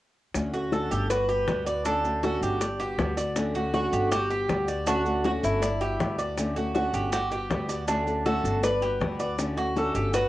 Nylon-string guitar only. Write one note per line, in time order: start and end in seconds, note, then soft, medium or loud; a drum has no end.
0.34 0.53 D3 medium
0.34 0.53 A3 medium
0.34 0.53 C#4 medium
0.34 0.52 F#4 medium
0.53 0.71 A3 soft
0.53 0.72 C#4 soft
0.53 0.72 F#4 soft
0.72 1.09 D3 medium
0.72 1.10 A3 medium
0.72 1.10 C#4 medium
0.72 1.10 F#4 medium
1.10 muted nylon-string guitar stroke medium
1.28 1.47 B3 soft
1.28 1.47 F#4 soft
1.48 1.66 G3 medium
1.48 1.66 B3 medium
1.48 1.65 F#4 medium
1.66 1.85 B3 soft
1.66 1.85 F#4 soft
1.85 2.03 D3 medium
1.85 2.04 A3 medium
1.85 2.03 C#4 medium
1.85 2.03 F#4 medium
2.04 2.22 A3 soft
2.04 2.23 C#4 soft
2.04 2.22 F#4 soft
2.23 2.60 D3 medium
2.23 2.60 A3 medium
2.23 2.60 C#4 medium
2.23 2.60 F#4 medium
2.61 muted nylon-string guitar stroke medium
2.80 2.98 B3 soft
2.80 2.98 F#4 soft
2.98 3.17 G3 medium
2.98 3.17 B3 medium
2.98 3.16 F#4 medium
3.17 3.36 B3 soft
3.17 3.36 F#4 medium
3.36 3.54 D3 medium
3.36 3.54 A3 medium
3.36 3.54 C#4 medium
3.36 3.54 F#4 medium
3.55 3.73 A3 soft
3.55 3.73 C#4 soft
3.55 3.73 F#4 soft
3.73 4.11 D3 medium
3.73 4.11 A3 medium
3.73 4.11 C#4 medium
3.73 4.11 F#4 medium
4.11 muted nylon-string guitar stroke medium
4.30 4.48 B3 soft
4.30 4.48 F#4 soft
4.49 4.67 G3 medium
4.49 4.67 B3 medium
4.49 4.66 F#4 medium
4.67 4.87 B3 soft
4.67 4.86 F#4 soft
4.86 5.05 D3 medium
4.86 5.05 A3 medium
4.86 5.05 C#4 medium
4.86 5.04 F#4 medium
5.05 5.23 A3 soft
5.05 5.24 C#4 soft
5.05 5.24 F#4 soft
5.24 5.61 D3 medium
5.24 5.61 A3 medium
5.24 5.62 C#4 medium
5.24 5.62 F#4 medium
5.62 muted nylon-string guitar stroke medium
5.81 5.99 B3 soft
5.81 5.99 F#4 soft
5.99 6.18 G3 medium
5.99 6.18 B3 medium
5.99 6.17 F#4 medium
6.18 6.37 B3 soft
6.18 6.37 F#4 soft
6.37 6.55 D3 medium
6.37 6.56 A3 medium
6.37 6.55 C#4 medium
6.37 6.55 F#4 medium
6.56 6.74 A3 soft
6.56 6.74 C#4 soft
6.56 6.74 F#4 soft
6.74 7.12 D3 medium
6.74 7.12 A3 medium
6.74 7.12 C#4 medium
6.74 7.12 F#4 medium
7.12 muted nylon-string guitar stroke medium
7.31 7.49 B3 soft
7.31 7.50 F#4 medium
7.50 7.68 G3 medium
7.50 7.69 B3 medium
7.50 7.67 F#4 medium
7.68 7.88 B3 soft
7.68 7.87 F#4 soft
7.87 8.06 D3 medium
7.87 8.06 A3 medium
7.87 8.06 C#4 medium
7.87 8.05 F#4 medium
8.06 8.24 A3 soft
8.06 8.25 C#4 soft
8.06 8.25 F#4 soft
8.25 8.62 D3 medium
8.25 8.62 A3 medium
8.25 8.63 C#4 medium
8.25 8.62 F#4 medium
8.63 muted nylon-string guitar stroke medium
8.81 9.00 B3 soft
8.81 9.00 F#4 soft
9.00 9.19 G3 medium
9.00 9.19 B3 medium
9.00 9.18 F#4 medium
9.19 9.38 B3 soft
9.19 9.38 F#4 medium
9.38 9.56 D3 medium
9.38 9.57 A3 medium
9.38 9.56 C#4 medium
9.38 9.55 F#4 medium
9.57 9.75 A3 soft
9.57 9.75 C#4 soft
9.57 9.75 F#4 soft
9.75 10.13 D3 medium
9.75 10.13 A3 medium
9.75 10.13 C#4 medium
9.75 10.13 F#4 medium
10.13 muted nylon-string guitar stroke medium